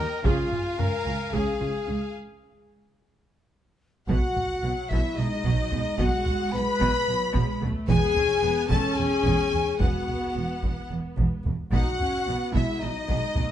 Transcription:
0.00 0.23 A#4 loud
0.00 0.24 A#4 loud
0.00 0.28 A#4 medium
0.00 0.21 D#5 medium
0.00 0.25 G5 medium
0.24 0.32 C#2 medium
0.24 0.50 C#4 medium
0.24 0.78 F4 loud
0.24 0.78 F4 medium
0.24 0.81 F4 medium
0.24 0.49 G#4 medium
0.24 2.13 F5 medium
0.24 2.13 G#5 medium
0.24 taiko loud
0.52 taiko low-mid soft
0.78 0.87 C#2 medium
0.78 0.86 C#4 medium
0.78 1.33 A#4 loud
0.78 1.32 A#4 loud
0.78 1.36 A#4 medium
0.78 taiko low-mid medium
1.06 1.14 C#2 medium
1.06 1.14 C#4 medium
1.06 1.14 F4 medium
1.32 1.41 C#2 medium
1.32 1.42 C#2 medium
1.32 1.58 C#4 medium
1.32 1.58 G#4 medium
1.32 2.16 G#4 medium
1.32 2.17 G#4 medium
1.32 taiko medium
1.60 1.68 C#2 soft
1.60 1.69 C#2 medium
1.60 1.68 C#4 medium
1.60 1.68 F4 medium
1.87 1.96 C#2 medium
1.87 1.97 C#2 medium
1.87 1.95 C#4 medium
4.08 4.16 B1 loud
4.08 4.17 B2 medium
4.08 4.87 F#4 loud
4.08 4.91 F#5 medium
4.08 4.87 F#5 medium
4.08 taiko loud
4.36 taiko low medium
4.63 4.71 B1 medium
4.63 4.71 B2 medium
4.63 5.14 F#3 medium
4.89 4.98 B1 medium
4.89 5.00 B2 medium
4.89 5.18 E4 loud
4.89 5.19 E5 medium
4.89 5.17 E5 medium
4.89 5.18 E5 medium
4.89 taiko medium
5.17 5.26 B1 medium
5.17 5.27 B2 medium
5.17 5.45 G#3 medium
5.17 6.00 D#4 loud
5.17 5.97 D#5 loud
5.17 5.98 D#5 medium
5.17 6.00 D#5 medium
5.45 5.53 B1 medium
5.45 5.53 B2 medium
5.45 5.72 F#3 medium
5.45 taiko medium
5.72 5.81 B1 medium
5.72 5.80 B2 medium
5.72 7.08 G#3 medium
5.72 taiko low medium
5.98 6.09 B1 loud
5.98 6.07 B2 loud
5.98 6.53 F#4 loud
5.98 6.53 F#5 medium
5.98 6.54 F#5 loud
5.98 6.55 F#5 loud
5.98 taiko loud
6.26 taiko low medium
6.52 6.62 B1 medium
6.52 6.62 B2 medium
6.52 7.59 B4 loud
6.52 7.61 B5 loud
6.52 7.62 B5 loud
6.52 7.63 B5 loud
6.80 6.89 B1 loud
6.80 6.89 B2 loud
6.80 taiko medium
7.08 7.16 B1 medium
7.08 7.16 B2 medium
7.08 7.35 F#3 medium
7.34 7.43 B1 loud
7.34 7.42 B2 loud
7.34 7.62 G#3 loud
7.34 taiko medium
7.62 7.71 B1 medium
7.62 7.70 B2 medium
7.62 7.90 A3 medium
7.62 taiko low medium
7.87 7.97 E1 loud
7.87 7.97 E2 loud
7.87 8.16 B3 loud
7.87 8.65 G#4 loud
7.87 8.66 G#5 loud
7.87 8.67 G#5 loud
7.87 taiko loud
8.15 8.43 C#4 loud
8.15 taiko low medium
8.42 8.50 E1 medium
8.42 8.51 E2 medium
8.42 8.70 B3 loud
8.69 8.78 E1 loud
8.69 8.78 E2 loud
8.69 9.77 C#4 loud
8.69 8.97 A4 loud
8.69 8.97 A5 loud
8.69 8.98 A5 loud
8.69 8.97 A5 loud
8.69 taiko medium
8.96 9.05 E1 medium
8.96 9.06 E2 medium
8.96 9.78 G#4 loud
8.96 9.79 G#5 loud
8.96 9.82 G#5 loud
8.96 9.80 G#5 loud
9.24 9.32 E1 medium
9.24 9.34 E2 medium
9.24 taiko medium
9.51 9.59 E1 medium
9.51 9.61 E2 medium
9.51 taiko low medium
9.79 9.88 E1 loud
9.79 9.88 E2 medium
9.79 11.42 B3 medium
9.79 10.87 F#4 loud
9.79 10.87 F#5 medium
9.79 10.90 F#5 medium
9.79 10.88 F#5 medium
9.79 taiko loud
10.08 taiko low medium
10.36 10.44 E1 medium
10.36 10.44 E2 medium
10.63 10.71 E1 medium
10.63 10.71 E2 medium
10.63 taiko medium
10.90 10.98 E1 medium
10.90 10.99 E2 medium
11.17 11.25 E1 medium
11.17 11.26 E2 medium
11.17 taiko medium
11.45 11.53 E1 medium
11.45 11.54 E2 medium
11.45 taiko low medium
11.71 11.80 B1 loud
11.71 11.81 B2 medium
11.71 11.98 D#4 medium
11.71 12.50 F#4 loud
11.71 12.50 F#5 medium
11.71 12.51 F#5 loud
11.71 12.51 F#5 medium
11.71 taiko loud
12.00 12.27 C#4 medium
12.00 taiko low medium
12.26 12.34 B1 medium
12.26 12.36 B2 medium
12.26 12.54 B3 medium
12.52 12.62 B1 medium
12.52 12.63 B2 loud
12.52 12.82 G#3 medium
12.52 12.81 E4 loud
12.52 12.81 E5 medium
12.52 12.85 E5 medium
12.52 12.82 E5 medium
12.52 taiko medium
12.80 12.90 B1 medium
12.80 12.90 B2 medium
12.80 13.09 F#3 medium
12.80 13.52 D#4 loud
12.80 13.52 D#5 medium
12.80 13.52 D#5 loud
12.80 13.52 D#5 medium
13.09 13.17 B1 medium
13.09 13.17 B2 medium
13.09 13.36 G#3 medium
13.09 taiko medium
13.36 13.45 B1 medium
13.36 13.44 B2 medium
13.36 13.52 A3 medium
13.36 taiko low medium

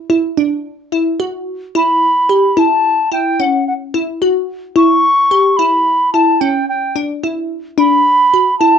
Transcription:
0.10 0.25 E4 medium
0.37 0.68 D4 medium
0.92 1.07 E4 medium
1.20 1.50 F#4 medium
1.75 2.05 E4 medium
1.75 2.60 B5 medium
2.29 2.45 G4 medium
2.57 2.87 E4 medium
2.57 3.12 A5 medium
3.12 3.27 E4 medium
3.12 3.42 G5 medium
3.40 3.70 C#4 medium
3.40 3.67 F#5 medium
3.67 3.74 F#5 medium
3.94 4.09 E4 medium
4.22 4.52 F#4 medium
4.76 5.06 E4 medium
4.76 5.58 C#6 loud
5.31 5.46 G4 medium
5.57 5.89 E4 medium
5.57 6.13 B5 medium
6.13 6.29 E4 medium
6.13 6.42 A5 medium
6.40 6.71 C#4 medium
6.40 6.68 G5 medium
6.69 6.94 G5 medium
6.96 7.11 D4 medium
7.23 7.54 E4 medium
7.78 8.08 D4 medium
7.78 8.57 B5 loud
8.34 8.49 F#4 medium
8.59 8.79 E4 medium
8.59 8.79 A5 loud

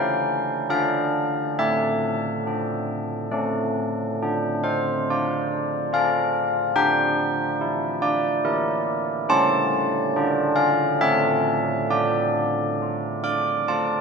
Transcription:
0.00 0.68 C#4 medium
0.00 0.67 E4 soft
0.00 0.66 A4 soft
0.00 0.66 G5 medium
0.70 1.54 D4 medium
0.70 1.54 A4 soft
0.70 1.55 F5 medium
1.59 3.30 A3 medium
1.59 3.74 E5 medium
2.47 3.30 D4 soft
2.47 3.30 A4 soft
3.31 4.18 A3 medium
3.31 4.17 C#4 soft
3.31 4.17 A4 soft
4.23 6.74 D4 medium
4.64 5.06 C5 medium
5.10 5.92 F4 soft
5.10 5.91 D5 medium
5.93 6.74 F4 soft
5.93 6.74 A4 soft
5.93 6.75 F5 medium
6.76 9.25 D4 medium
6.76 7.99 G5 loud
7.61 8.44 E4 soft
8.02 8.84 D5 medium
8.45 9.25 E4 medium
8.45 9.25 A#4 medium
9.29 10.12 C#4 medium
9.29 10.10 G4 soft
9.29 10.10 A4 medium
9.29 10.53 A5 loud
10.16 10.99 D4 medium
10.16 10.98 F4 soft
10.16 10.98 A4 soft
10.56 10.98 F5 medium
11.01 11.87 A3 medium
11.01 11.86 C#4 soft
11.01 11.86 A4 soft
11.01 11.86 E5 medium
11.90 14.01 D4 medium
11.90 13.22 D5 medium
12.82 13.67 F4 soft
13.24 13.65 D5 medium
13.24 13.67 D6 medium
13.68 14.01 F4 soft
13.68 14.01 A4 soft
13.68 14.01 A5 medium

